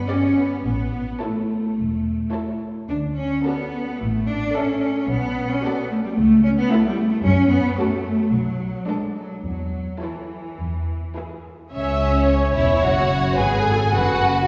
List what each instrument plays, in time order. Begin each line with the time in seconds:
0.08 cello section C#4, viola section G4, violin section D5
0.38 cello section B3
0.64 double bass section A1, cello section B3
1.20 cello section A3, viola section E4, violin section A4 C#5
1.77 double bass section E1
2.32 viola section E4, violin section A4 C#5
2.88 double bass section D2, cello section D4
3.17 cello section C#4
3.45 cello section B3, viola section F#4, violin section A4 D5
4.00 double bass section A1, cello section A3
4.27 cello section D4
4.55 cello section C#4, violin section A4 E5, viola section A4
5.09 double bass section B1, cello section B3
5.52 cello section C#4
5.64 cello section B3, viola section F#4, violin section A4 D5
5.91 cello section A3
6.05 cello section G3
6.17 double bass section C#2, cello section A3
6.44 cello section C#4
6.59 cello section B3
6.71 cello section A3, viola section E4, violin section A4 E5
6.86 cello section G3
6.98 cello section A3
7.12 cello section A3
7.24 double bass section F#2, cello section C#4
7.50 cello section B3
7.77 cello section A3, viola section F#4, violin section A4 C#5
8.32 double bass section B1, cello section F#3
8.87 cello section G#3, viola section D4, violin section A4 D5
9.15 cello section F#3
9.44 double bass section E2, cello section F#3
10.02 cello section E3, viola section E4, violin section A4 C#5
10.59 double bass section E2
11.16 viola section E4, violin section G#4 B4
11.73 double bass section C#2, cello section C#2, violin section C#4 C#5, viola section E5
12.28 viola section C#5
12.56 double bass section E1, cello section E2, violin section E4 E5
12.83 double bass section F#1, cello section F#2, violin section F#4 F#5
13.37 double bass section G#1, cello section G#2, violin section G#4 G#5, viola section B4
13.64 viola section A4
13.92 double bass section F#1, cello section F#2, violin section F#4 F#5, viola section B4